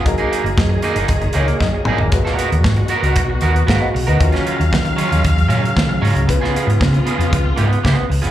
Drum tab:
HH |xxxx--xxxxxx----|x-xx-xxxx-xx--ox|xxxx-xxxxxxx--ox|x-xx-xxxx-xx--ox|
SD |----o-------o---|-o--o-------o---|-o--o-------o---|-o--o-------o---|
T2 |--------------o-|----------------|----------------|----------------|
FT |---------------o|----------------|----------------|----------------|
BD |o---o---o---o---|o---o---o---o---|o---o---o---o---|o---o---o---o---|